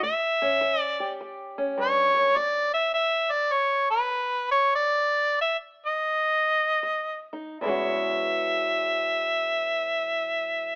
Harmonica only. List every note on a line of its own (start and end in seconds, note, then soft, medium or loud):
0.04 0.81 E5 loud
0.81 1.15 D5 loud
1.81 2.39 C#5 loud
2.37 2.73 D5 loud
2.74 2.93 E5 loud
2.94 3.33 E5 loud
3.31 3.54 D5 loud
3.52 3.90 C#5 medium
3.91 4.48 B4 medium
4.51 4.73 C#5 medium
4.75 5.37 D5 loud
5.41 5.57 E5 medium
5.86 7.28 D#5 medium
7.60 10.75 E5 loud